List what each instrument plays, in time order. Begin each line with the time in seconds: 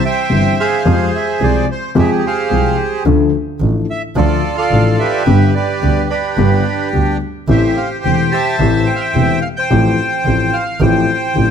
0.05 bandoneon C5 E5 G5
0.30 grand piano G1 G2 E3 G3 C4 G4, double bass G1
0.60 bandoneon G#4 C5 F5
0.85 grand piano F2 F3 G#3 C4 G4, double bass F2
1.15 bandoneon E5
1.41 double bass C2, grand piano C2 C3 F3 G#3 C4 G4, bandoneon D5
1.72 bandoneon C5
1.95 grand piano F2 F3 G#3 C4 G4, double bass F2, bandoneon G4 G#4 E5
2.26 bandoneon G#4 C5 F5
2.51 double bass C2, grand piano C2 C3 F3 G#3 C4 G4
3.05 grand piano D2 D3 F3 A3 D4 A4, double bass D2
3.60 double bass A1, grand piano A1 A2 F3 A3 D4 A4
3.90 bandoneon E5
4.16 grand piano D2 D3 F3 A3 D4 A4, double bass D2, bandoneon F4 A4 D5
4.57 bandoneon A4 D5 F5
4.71 double bass A1, grand piano A1 A2 F3 A3 D4 A4
4.99 bandoneon G4 B4 E5
5.27 grand piano G1 G2 D3 G3 B3 G4, double bass G1
5.54 bandoneon G4 B4 D5
5.82 double bass D2, grand piano D2 D3 G3 B3 G4
6.09 bandoneon D4 G4 B4
6.37 double bass G1, grand piano G1 G2 D3 G3 B3 G4
6.92 grand piano D2 D3 G3 B3 G4, double bass D2
7.48 double bass A1, grand piano A1 A2 E3 A3 C4 G4, bandoneon G4 C5 E5
7.77 bandoneon F5
8.04 double bass E1, grand piano E1 E2 E3 A3 C4 G4, bandoneon G5
8.32 bandoneon C5 E5 A5
8.59 double bass A1, grand piano A1 A2 E3 A3 C4 G4
8.86 bandoneon G5
8.96 bandoneon F5
9.00 bandoneon G5
9.15 double bass E1, grand piano E1 E2 E3 A3 C4 G4
9.42 bandoneon F5
9.56 bandoneon C5 G5
9.70 grand piano A1 A2 F3 A3 C4 G4, double bass A1
10.25 double bass A1, grand piano A1 A2 F3 A3 C4 G4
10.53 bandoneon F5
10.80 double bass A1, grand piano A1 A2 F3 A3 C4 G4, bandoneon C5 G5
11.35 double bass A1, grand piano A1 A2 F3 A3 C4 G4